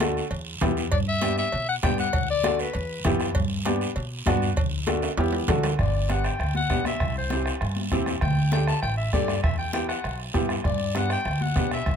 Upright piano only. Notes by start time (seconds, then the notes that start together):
0.01 A3 D4 F#4
0.62 B3 E4 G4
1.21 B3 D4 G4
1.83 B3 D4 G4
2.44 A3 D4 F#4
3.05 B3 E4 G4
3.65 B3 D4 G4
4.27 B3 D4 F#4
4.87 A3 D4 F#4
5.18 B3 E4 G4
5.49 A3 D4 F#4
6.09 B3 D4 G4
6.70 B3 D4 G4
7.31 C4 E4 G4
7.92 C4 E4 G4
8.52 A3 D4 G4
9.14 A3 D4 G4
9.74 B3 E4 G4
10.34 B3 E4 G4
10.95 B3 D4 G4
11.56 B3 D4 G4